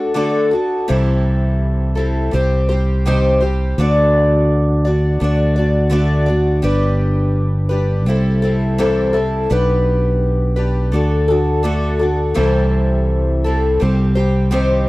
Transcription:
Already playing: D4 F#4 A4
0.14 D3 A3 D4 F#4 A4
0.51 D4 F#4 A4
0.88 C2 C3 E3 G3 C4 E4 A4
1.95 G3 C4 E4 A4
2.31 C2 G3 C4 G4 C5
2.69 G3 C4 G4 C5
3.06 C3 D#3 G3 C4 G4 C5
3.41 G3 C4 G4 C5
3.78 D2 D3 A3 D4 F#4 D5
4.85 D4 F#4 D5
5.20 D2 A3 D4 F#4 D5
5.56 D4 F#4 D5
5.90 D3 A3 D4 F#4 D5
6.26 D4 F#4 D5
6.62 G1 G3 D4 G4 B4
7.69 D4 G4 B4
8.06 C2 G3 C4 E4 A4
8.42 G3 C4 E4 A4
8.78 C3 E3 G3 C4 E4 A4
9.13 G3 C4 E4 A4
9.50 B1 B3 D4 G4 B4
10.56 D4 G4 B4
10.92 D2 A3 D4 F#4 A4
11.28 D4 F#4 A4
11.63 D3 A3 D4 F#4 A4
11.99 D4 F#4 A4
12.34 C2 C3 E3 G3 C4 E4 A4
13.44 C4 E4 A4
13.48 G3
13.80 C2 G3 C4 G4 C5
14.15 G3 C4 G4 C5
14.51 C3 D#3 G3 C4 G4 C5

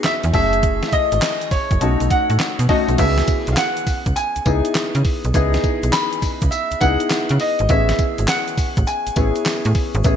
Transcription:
Already playing: B3 D#4 F#4 G#4
0.04 E5, snare, clap, closed hi-hat, shaker
0.23 E2, closed hi-hat, shaker
0.33 F#1 A3 C#4 E4 G#4 E5, kick, open hi-hat
0.53 closed hi-hat, shaker
0.63 kick, closed hi-hat, shaker
0.83 snare, closed hi-hat, shaker
0.88 E5
0.92 D#5, kick, closed hi-hat, shaker
1.12 G#1, closed hi-hat, shaker
1.22 snare, clap, closed hi-hat, shaker
1.41 closed hi-hat, shaker
1.51 F#1 C#5, kick, open hi-hat, shaker
1.71 F#1, kick, closed hi-hat, shaker
1.81 B1 A3 C#4 D#4 F#4, closed hi-hat, shaker
2.00 B1, closed hi-hat, shaker
2.11 F#5, kick, closed hi-hat, shaker
2.30 A2, closed hi-hat, shaker
2.40 snare, clap, closed hi-hat, shaker
2.59 B2, closed hi-hat, shaker
2.69 A3 C#4 D#4 F#4 D#5, kick, open hi-hat
2.88 B1, closed hi-hat, shaker
2.98 C#2 B3 C#4 E4 G#4 E5, kick, closed hi-hat, crash, tambourine, shaker
3.18 snare, closed hi-hat, shaker
3.27 kick, closed hi-hat, tambourine
3.47 B1, closed hi-hat, shaker
3.52 F5
3.57 F#5, snare, clap, closed hi-hat, tambourine, shaker
3.77 closed hi-hat, shaker
3.87 C#2, kick, open hi-hat, tambourine, shaker
4.06 C#2, kick, closed hi-hat, shaker
4.16 G#5, closed hi-hat, tambourine, shaker
4.36 C#2, closed hi-hat, shaker
4.46 C#2 B3 D#4 E4 G#4, kick, closed hi-hat, tambourine
4.65 closed hi-hat, shaker
4.75 snare, clap, closed hi-hat, tambourine, shaker
4.95 C#3, closed hi-hat, shaker
5.05 kick, open hi-hat
5.24 B1, closed hi-hat, shaker
5.34 C#2 B3 D#4 E4 G#4, kick, closed hi-hat, tambourine, shaker
5.54 snare, closed hi-hat, shaker
5.64 kick, closed hi-hat, tambourine
5.83 B1, closed hi-hat, shaker
5.92 B5, snare, clap, closed hi-hat, tambourine, shaker
6.12 closed hi-hat, shaker
6.22 C#2, kick, open hi-hat, tambourine, shaker
6.41 C#2, kick, closed hi-hat, shaker
6.51 E5, closed hi-hat, tambourine, shaker
6.71 C#2, closed hi-hat, shaker
6.81 C#2 B3 D#4 E4 G#4 F#5, kick, closed hi-hat, tambourine
7.00 closed hi-hat, shaker
7.10 snare, clap, closed hi-hat, tambourine, shaker
7.29 C#3, closed hi-hat, shaker
7.40 D#5, open hi-hat
7.59 G#1, closed hi-hat, shaker
7.69 A1 B3 C#4 E4 G#4 E5, kick, closed hi-hat, tambourine, shaker
7.89 snare, closed hi-hat, shaker
7.99 kick, closed hi-hat, tambourine
8.18 G#1, closed hi-hat, shaker
8.28 F#5, snare, clap, closed hi-hat, tambourine, shaker
8.48 closed hi-hat, shaker
8.58 A1, kick, open hi-hat, tambourine, shaker
8.77 A1, kick, closed hi-hat, shaker
8.87 G#5, closed hi-hat, tambourine, shaker
9.07 A1, closed hi-hat, shaker
9.16 A1 B3 C#4 E4 G#4, kick, closed hi-hat, tambourine
9.36 closed hi-hat, shaker
9.46 snare, clap, closed hi-hat, tambourine, shaker
9.65 A2, closed hi-hat, shaker
9.75 kick, open hi-hat
9.94 G#1, closed hi-hat, shaker
10.04 A1 B3 C#4 E4 G#4, kick, closed hi-hat, tambourine, shaker

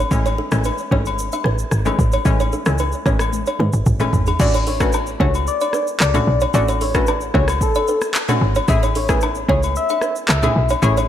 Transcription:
0.11 A1 E3 G#3 A3 C#4, kick, shaker
0.26 C#5, high agogo, shaker
0.38 A4
0.51 A1 E3 G#3 A3 C#4, cross-stick, shaker
0.64 B4, high agogo, shaker
0.78 shaker
0.91 G#1 E3 G#3 A3 C#4 C#5, kick
1.06 high agogo, shaker
1.19 shaker
1.32 E5, high agogo, shaker
1.44 A1 B4, cross-stick
1.58 shaker
1.71 G#1, cross-stick, shaker
1.85 E3 G#3 A3 C#4 A4, high agogo, shaker
1.99 A1, kick, shaker
2.12 C#5, high agogo, shaker
2.25 A1 E3 G#3 A3 C#4, kick, shaker
2.40 C#5, high agogo, shaker
2.52 A4, shaker
2.66 C#2 E3 G#3 A3 C#4, cross-stick, shaker
2.78 B4, high agogo, shaker
2.92 shaker
3.06 A1 E3 G#3 A3 C#4 C#5, kick, cross-stick, shaker
3.19 cross-stick, high agogo, shaker
3.33 high tom, shaker
3.46 C#5, high agogo, shaker
3.59 G#2 B4, mid tom
3.73 G#1, shaker
3.86 G#1, kick, mid tom, shaker
4.00 E3 G#3 A3 C#4 A4, mid tom, high agogo, shaker
4.13 G#1, floor tom, shaker
4.26 G#4, floor tom, high agogo, shaker
4.40 A1 A3 C#4 D4 F#4 D5, kick, crash, shaker
4.54 C#5, high agogo, shaker
4.67 A4 C#5, open hi-hat, shaker
4.80 A3 C#4 D4 F#4 B4, kick, cross-stick, shaker
4.92 B4, high agogo, low woodblock, shaker
5.07 shaker
5.20 C#2 A3 C#4 D4 F#4 C#5, kick
5.34 high agogo, shaker
5.47 D5, shaker
5.61 D5, high agogo, shaker
5.73 B4, cross-stick, shaker
5.87 shaker
6.00 C#2 D5, cross-stick, clap, low woodblock, shaker
6.14 A3 C#4 D4 F#4 A4, mid tom, high agogo, shaker
6.27 B1
6.40 C#5, high agogo, shaker
6.54 A1 A3 C#4 D4 F#4 D5, shaker
6.68 C#5, high agogo, shaker
6.81 A4 C#5, open hi-hat, shaker
6.94 A3 C#4 D4 F#4 B4, kick, cross-stick, shaker
7.07 B4, high agogo, low woodblock, shaker
7.21 shaker
7.34 C#2 A3 C#4 D4 F#4 C#5, kick, cross-stick
7.48 cross-stick, high agogo, shaker
7.61 A4, kick, shaker
7.75 D5, high agogo, shaker
7.88 B4, shaker
8.01 cross-stick, shaker
8.14 clap, low woodblock, shaker
8.28 A3 C#4 D4 F#4 A4, mid tom, high agogo, shaker
8.41 G#1
8.55 C#5, high agogo, shaker
8.68 A1 A3 C#4 E4 G#4 E5, kick, shaker
8.83 C#5, high agogo, shaker
8.95 A4 C#5, open hi-hat, shaker
9.09 A3 C#4 E4 G#4 B4, kick, cross-stick, shaker
9.21 B4, high agogo, low woodblock, shaker
9.35 shaker
9.48 C#2 A3 C#4 E4 G#4 C#5, kick
9.63 high agogo, shaker
9.76 E5, shaker
9.89 E5, high agogo, shaker
10.01 B4, cross-stick, shaker
10.16 shaker
10.28 C#2 E5, cross-stick, clap, low woodblock, shaker
10.43 A3 C#4 E4 G#4 A4, mid tom, high agogo, shaker
10.56 B1
10.69 C#5, high agogo, shaker
10.82 A1 A3 C#4 E4 G#4 C#5, shaker
10.97 C#5, high agogo, shaker

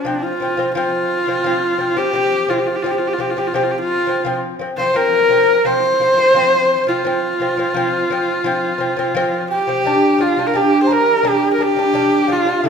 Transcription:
Already playing: D4
0.05 F3 C4
0.22 F4
0.40 F3 C4
0.57 F3 C4
0.74 F3 C4 F4
1.27 F3 C4
1.44 F3 C4
1.78 F3 C4
1.96 F3 C4 G4
2.13 F3 C4
2.48 F3 C4 F4
2.59 G4
2.67 F4
2.76 G4
2.83 F3 C4 F4
2.91 G4
2.99 F4
3.07 G4
3.14 F4
3.18 F3 C4 G4
3.30 F4
3.37 F3 C4 G4
3.47 F4
3.54 F3 C4 G4
3.63 F4
3.71 G4
3.79 F4
4.07 F3 C4
4.25 F3 C4
4.59 F3 C4
4.78 F3 C4 C5
4.94 F3 C4 A#4
5.29 F3 C4
5.65 F3 C4 C5
6.00 F3 C4
6.17 F3 C4
6.34 F3 C4
6.87 F3 C4 F4
7.05 F3 C4
7.40 F3 C4
7.57 F3 C4
7.74 F3 C4
8.10 F3 C4
8.44 F3 C4
8.78 F3 C4
8.97 F3 C4
9.15 F3 C4
9.51 G4 G5
9.67 F3 C4
9.85 G3 D4
10.18 G3 D4 F4 G5
10.23 F5
10.37 G3 D4
10.47 A#4
10.54 G3 D4 G4 G5
10.83 C5
10.87 G3 D4 A#5
10.93 A#4
11.23 G3 D4 A#5
11.28 G4 G5
11.54 A#4 A#5
11.58 G3 D4 G5
11.62 G4
11.77 G3 D4
11.94 G3 D4
12.27 G3 D4 F5
12.32 F4
12.45 G3 D4
12.61 D3 A3 C5

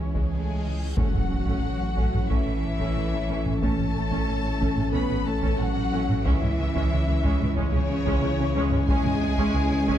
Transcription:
Already playing: C#2 E3 C#4 E4 G#4 C#5, reverse cymbal
0.13 C#3 G#3, taiko
0.30 C#3 G#3 A3 G#4 G#5
0.48 C#3
0.63 C#3 G#3
0.81 C#3
0.96 A1 E3 F#3 A3 C#4 F#4 A4 C#5 F#5, taiko, impact
1.14 A1 A3 C#4, taiko low-mid
1.30 A1 A3 C#4
1.46 A1 A3 C#4, taiko
1.62 A1 A3 C#4
1.80 A1 A3 C#4
1.96 A1 A3 C#4, taiko
2.13 A1 A3 C#4, taiko low-mid
2.29 A1 E3 A3 C#4 E4 E5, taiko
2.46 A1 A3 C#4
2.62 A1 A3 C#4
2.78 A1 A3 C#4, taiko
2.95 A1 A3 C#4
3.12 A1 A3 C#4
3.28 A1 A3 C#4
3.45 A1 A3 C#4, taiko low-mid
3.61 A1 A3 C#4 A4 A5, taiko
3.78 A1 A3 C#4, taiko low-mid
3.95 A1 A3 C#4
4.11 A1 A3 C#4, taiko
4.27 A1 A3 C#4
4.43 A1 A3 C#4
4.61 A1 A3 C#4, taiko
4.77 A1 A3 C#4, taiko low-mid
4.93 A1 A3 B3 C#4 B4 B5, taiko
5.09 A1 A3 C#4
5.26 A1 A3 C#4 A4 A5
5.42 A1 A3 C#4, taiko
5.59 A1 F#3 A3 C#4 F#4 F#5
5.76 A1 A3 C#4
5.92 A1 A3 C#4
6.09 A1 A3 C#4, taiko low-mid
6.25 C#2 E3 G#3 C#4 E4 C#5 E5, taiko
6.42 C#2 G#3 C#4, taiko low-mid
6.59 C#2 G#3 C#4
6.75 C#2 G#3 C#4, taiko
6.91 C#2 G#3 C#4
7.08 C#2 G#3 C#4
7.23 C#2 G#3 C#4, taiko
7.40 C#2 G#3 C#4, taiko low-mid
7.56 C#2 C#3 G#3 C#4 C#5, taiko
7.72 C#2 G#3 C#4
7.89 C#2 G#3 C#4
8.05 C#2 G#3 C#4, taiko
8.22 C#2 G#3 C#4
8.39 C#2 G#3 C#4
8.54 C#2 G#3 C#4
8.70 C#2 G#3 C#4, taiko low-mid
8.87 C#2 G#3 C#4 G#4 G#5, taiko
9.04 C#2 G#3 C#4, taiko low-mid
9.21 C#2 G#3 C#4
9.37 C#2 G#3 C#4, taiko
9.54 C#2 G#3 C#4
9.70 C#2 G#3 C#4
9.86 C#2 G#3 C#4, taiko

